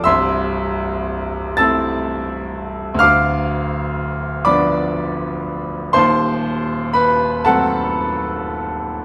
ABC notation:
X:1
M:6/8
L:1/8
Q:3/8=40
K:Am
V:1 name="Grand piano"
[ec'e']3 [ae'a']3 | [fd'f']3 [dbd']2 z | [^Ba^b]2 [=B=b] [A^fa]3 |]
V:2 name="Grand piano" clef=bass
[C,,,C,,]3 [A,CE]3 | [D,,,D,,]3 [F,B,D]3 | [^D,,,^D,,]3 [^F,A,^B,]3 |]